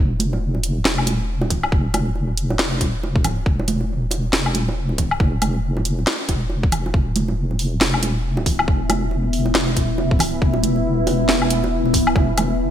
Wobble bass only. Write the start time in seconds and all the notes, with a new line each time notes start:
0.00 E1
0.85 E1
1.72 E1
2.59 E1
3.19 D#1
3.46 E1
4.33 E1
5.20 E1
6.29 E1
6.94 E1
7.81 E1
8.68 E1
9.55 E1
10.42 E1
11.29 E1
12.16 E1